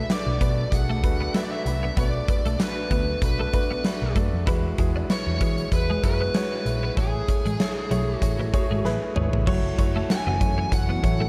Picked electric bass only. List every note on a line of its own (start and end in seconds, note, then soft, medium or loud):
0.26 0.37 B1 medium
0.41 0.64 B2 medium
0.72 1.04 B1 medium
1.04 1.27 D2 medium
1.66 1.89 C2 medium
1.97 2.20 B1 loud
2.45 2.56 B1 medium
2.91 3.14 D2 medium
3.22 3.45 B1 medium
4.02 4.12 B1 medium
4.16 4.29 F#2 medium
4.33 4.44 F2 medium
4.47 4.71 E2 medium
4.78 5.02 E2 medium
5.27 5.37 E2 medium
5.41 5.64 E3 medium
5.72 5.95 E2 medium
6.04 6.27 F#2 medium
6.66 6.89 A#1 medium
6.97 7.21 A1 loud
7.45 7.56 A1 medium
7.91 8.14 B1 medium
8.22 8.35 A1 medium
8.39 8.50 A1 medium
8.70 8.81 G#1 medium
8.84 8.97 A1 medium
9.16 9.29 G#1 medium
9.33 9.43 A1 medium
9.79 10.02 F#1 loud
10.27 10.37 F#1 medium
10.41 10.64 F#2 medium
10.72 10.95 F#1 medium
11.04 11.27 A1 medium